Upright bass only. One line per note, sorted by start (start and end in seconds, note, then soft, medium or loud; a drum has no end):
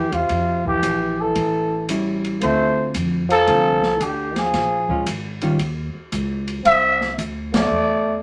0.00 0.10 F2 medium
0.12 0.28 E2 medium
0.29 0.79 F2 medium
0.82 1.32 A#1 medium
1.36 2.38 A1 medium
2.42 2.93 D2 medium
2.95 3.46 F2 medium
3.47 3.99 C2 medium
4.00 4.52 D2 medium
4.54 5.05 A#1 medium
5.06 5.58 G#1 medium
5.59 5.92 D#2 medium
5.95 muted upright bass stroke soft
6.12 6.64 C#2 medium
6.65 7.17 C2 medium
7.18 7.70 D2 medium
7.71 8.22 E2 medium